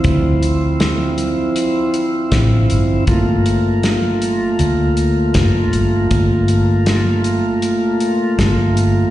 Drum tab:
HH |xxxxxxxx|xxxxxxxx|xxxxxxxx|
SD |--o---o-|--o---o-|--o---o-|
BD |o-----o-|o-----o-|o-----o-|